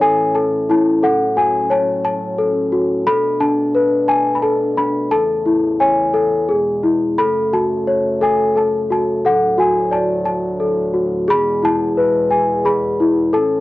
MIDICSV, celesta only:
0, 0, Header, 1, 2, 480
1, 0, Start_track
1, 0, Tempo, 683371
1, 726, Time_signature, 3, 2, 24, 8
1, 9555, End_track
2, 0, Start_track
2, 0, Title_t, "Celesta"
2, 0, Program_c, 0, 8
2, 0, Note_on_c, 0, 64, 54
2, 0, Note_on_c, 0, 69, 68
2, 0, Note_on_c, 0, 73, 66
2, 9, Note_on_c, 0, 80, 77
2, 10, Note_off_c, 0, 69, 0
2, 10, Note_on_c, 0, 69, 73
2, 231, Note_off_c, 0, 80, 0
2, 245, Note_on_c, 0, 81, 70
2, 247, Note_off_c, 0, 69, 0
2, 247, Note_on_c, 0, 69, 58
2, 480, Note_off_c, 0, 64, 0
2, 488, Note_off_c, 0, 81, 0
2, 488, Note_on_c, 0, 64, 67
2, 497, Note_on_c, 0, 81, 73
2, 713, Note_off_c, 0, 69, 0
2, 722, Note_on_c, 0, 69, 70
2, 726, Note_off_c, 0, 64, 0
2, 726, Note_off_c, 0, 73, 0
2, 727, Note_on_c, 0, 78, 85
2, 738, Note_off_c, 0, 81, 0
2, 958, Note_on_c, 0, 66, 55
2, 962, Note_on_c, 0, 80, 72
2, 972, Note_off_c, 0, 78, 0
2, 1195, Note_on_c, 0, 73, 65
2, 1203, Note_on_c, 0, 81, 72
2, 1207, Note_off_c, 0, 80, 0
2, 1429, Note_off_c, 0, 81, 0
2, 1437, Note_on_c, 0, 81, 82
2, 1667, Note_off_c, 0, 69, 0
2, 1675, Note_on_c, 0, 69, 63
2, 1904, Note_off_c, 0, 66, 0
2, 1913, Note_on_c, 0, 66, 62
2, 2146, Note_off_c, 0, 69, 0
2, 2148, Note_off_c, 0, 73, 0
2, 2151, Note_off_c, 0, 66, 0
2, 2151, Note_off_c, 0, 81, 0
2, 2154, Note_on_c, 0, 69, 71
2, 2154, Note_on_c, 0, 83, 108
2, 2375, Note_off_c, 0, 83, 0
2, 2391, Note_on_c, 0, 62, 57
2, 2392, Note_on_c, 0, 81, 81
2, 2632, Note_on_c, 0, 71, 61
2, 2858, Note_off_c, 0, 81, 0
2, 2866, Note_on_c, 0, 81, 81
2, 2868, Note_on_c, 0, 80, 70
2, 3055, Note_on_c, 0, 83, 62
2, 3066, Note_off_c, 0, 80, 0
2, 3098, Note_off_c, 0, 81, 0
2, 3100, Note_off_c, 0, 69, 0
2, 3106, Note_on_c, 0, 81, 69
2, 3107, Note_off_c, 0, 83, 0
2, 3108, Note_on_c, 0, 69, 64
2, 3341, Note_off_c, 0, 62, 0
2, 3349, Note_on_c, 0, 62, 59
2, 3353, Note_on_c, 0, 83, 77
2, 3356, Note_off_c, 0, 81, 0
2, 3583, Note_off_c, 0, 69, 0
2, 3590, Note_off_c, 0, 62, 0
2, 3590, Note_on_c, 0, 81, 88
2, 3592, Note_off_c, 0, 71, 0
2, 3592, Note_on_c, 0, 69, 71
2, 3599, Note_off_c, 0, 83, 0
2, 3833, Note_on_c, 0, 64, 58
2, 4075, Note_on_c, 0, 80, 73
2, 4077, Note_on_c, 0, 73, 59
2, 4085, Note_off_c, 0, 81, 0
2, 4312, Note_off_c, 0, 69, 0
2, 4312, Note_on_c, 0, 69, 74
2, 4558, Note_off_c, 0, 69, 0
2, 4558, Note_on_c, 0, 68, 63
2, 4561, Note_off_c, 0, 64, 0
2, 4562, Note_off_c, 0, 73, 0
2, 4779, Note_off_c, 0, 80, 0
2, 4801, Note_on_c, 0, 64, 61
2, 5045, Note_on_c, 0, 83, 101
2, 5047, Note_off_c, 0, 64, 0
2, 5048, Note_off_c, 0, 68, 0
2, 5048, Note_on_c, 0, 69, 66
2, 5291, Note_on_c, 0, 66, 62
2, 5294, Note_on_c, 0, 81, 75
2, 5297, Note_off_c, 0, 83, 0
2, 5531, Note_on_c, 0, 73, 63
2, 5770, Note_off_c, 0, 69, 0
2, 5770, Note_on_c, 0, 69, 80
2, 5778, Note_on_c, 0, 80, 67
2, 5791, Note_off_c, 0, 81, 0
2, 6001, Note_off_c, 0, 80, 0
2, 6010, Note_off_c, 0, 69, 0
2, 6010, Note_on_c, 0, 69, 62
2, 6022, Note_on_c, 0, 81, 69
2, 6128, Note_off_c, 0, 81, 0
2, 6245, Note_off_c, 0, 66, 0
2, 6254, Note_on_c, 0, 66, 58
2, 6264, Note_on_c, 0, 81, 78
2, 6487, Note_off_c, 0, 69, 0
2, 6493, Note_off_c, 0, 73, 0
2, 6494, Note_off_c, 0, 66, 0
2, 6495, Note_on_c, 0, 69, 68
2, 6502, Note_on_c, 0, 78, 84
2, 6506, Note_off_c, 0, 81, 0
2, 6720, Note_off_c, 0, 78, 0
2, 6728, Note_on_c, 0, 66, 65
2, 6737, Note_on_c, 0, 80, 66
2, 6962, Note_on_c, 0, 74, 57
2, 6971, Note_on_c, 0, 81, 74
2, 6979, Note_off_c, 0, 80, 0
2, 7194, Note_off_c, 0, 81, 0
2, 7202, Note_on_c, 0, 81, 78
2, 7436, Note_off_c, 0, 69, 0
2, 7444, Note_on_c, 0, 69, 57
2, 7673, Note_off_c, 0, 66, 0
2, 7682, Note_on_c, 0, 66, 60
2, 7921, Note_on_c, 0, 68, 83
2, 7924, Note_off_c, 0, 74, 0
2, 7925, Note_off_c, 0, 66, 0
2, 7925, Note_off_c, 0, 81, 0
2, 7927, Note_off_c, 0, 69, 0
2, 7938, Note_on_c, 0, 83, 105
2, 8165, Note_on_c, 0, 64, 62
2, 8180, Note_off_c, 0, 83, 0
2, 8181, Note_on_c, 0, 81, 93
2, 8409, Note_on_c, 0, 71, 64
2, 8643, Note_on_c, 0, 80, 66
2, 8665, Note_off_c, 0, 81, 0
2, 8878, Note_off_c, 0, 68, 0
2, 8886, Note_on_c, 0, 68, 67
2, 8890, Note_on_c, 0, 83, 79
2, 8891, Note_off_c, 0, 80, 0
2, 9123, Note_off_c, 0, 64, 0
2, 9133, Note_on_c, 0, 64, 64
2, 9341, Note_off_c, 0, 83, 0
2, 9363, Note_on_c, 0, 69, 73
2, 9367, Note_off_c, 0, 68, 0
2, 9367, Note_off_c, 0, 71, 0
2, 9370, Note_off_c, 0, 64, 0
2, 9370, Note_on_c, 0, 81, 81
2, 9555, Note_off_c, 0, 69, 0
2, 9555, Note_off_c, 0, 81, 0
2, 9555, End_track
0, 0, End_of_file